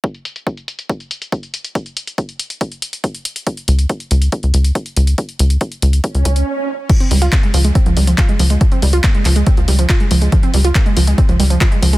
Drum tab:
CC |----------------|----------------|----------------|----------------|
HH |xxxxxxxxxxxxxxxx|xxxxxxxxxxxxxxxx|xxxxxxxxxxxxxxxx|xxxxxxxxxxxx----|
CP |----------------|----------------|----------------|----------------|
BD |o---o---o---o---|o---o---o---o---|o---o---o---o---|o---o---o-o-----|

CC |x---------------|----------------|----------------|
HH |xxoxxxoxxxoxxxox|xxoxxxoxxxoxxxox|xxoxxxoxxxoxxxox|
CP |----x-------x---|----x-x-----x---|----x-------x---|
BD |o---o---o---o---|o---o---o---o---|o---o---o---o---|